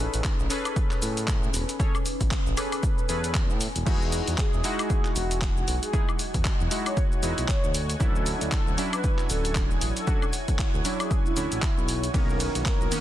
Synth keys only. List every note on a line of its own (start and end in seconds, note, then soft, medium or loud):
0.00 0.47 C#4 medium
0.00 0.48 G#4 medium
0.00 0.48 A4 medium
0.00 0.48 B4 loud
0.50 1.77 C#4 medium
0.50 1.77 G#4 medium
0.50 1.77 A4 medium
0.50 1.77 B4 loud
1.79 1.96 C#4 medium
1.79 1.96 G#4 medium
1.79 1.97 A4 medium
1.79 1.97 C#5 medium
2.57 3.06 C#4 medium
2.57 3.06 G#4 medium
2.57 3.07 A4 medium
2.57 3.07 B4 medium
3.09 3.33 C#4 medium
3.09 3.33 G#4 medium
3.09 3.33 A4 medium
3.09 3.34 B4 medium
3.86 4.61 G#3 medium
3.86 4.61 D#4 medium
3.86 4.62 E4 medium
3.86 4.62 F#4 medium
4.64 5.91 G#3 medium
4.64 5.91 D#4 medium
4.64 5.91 E4 medium
4.64 5.91 F#4 loud
5.93 6.10 G#3 medium
5.93 6.10 D#4 medium
5.93 6.10 E4 medium
5.93 6.11 G#4 loud
6.71 7.20 G#3 medium
6.71 7.20 D#4 medium
6.71 7.20 E4 medium
6.71 7.20 F#4 medium
7.22 7.47 G#3 medium
7.22 7.47 D#4 medium
7.22 7.47 E4 medium
7.22 7.47 F#4 medium
8.00 8.75 F#3 medium
8.00 8.75 C#4 medium
8.00 8.76 D4 medium
8.00 8.76 E4 medium
8.77 10.04 F#3 medium
8.77 10.05 C#4 medium
8.77 10.05 D4 medium
8.77 10.05 E4 loud
10.07 10.24 F#3 medium
10.07 10.24 C#4 medium
10.07 10.24 D4 medium
10.07 10.24 F#4 medium
10.85 11.34 F#3 medium
10.85 11.34 C#4 medium
10.85 11.34 D4 medium
10.85 11.34 E4 medium
11.36 11.61 F#3 medium
11.36 11.61 C#4 medium
11.36 11.61 D4 medium
11.36 11.61 E4 medium
12.14 12.89 D#3 medium
12.14 12.89 A#3 medium
12.14 12.89 B3 medium
12.14 12.90 C#4 medium
12.91 13.01 D#3 medium
12.91 13.01 A#3 medium
12.91 13.01 B3 medium
12.91 13.01 C#4 loud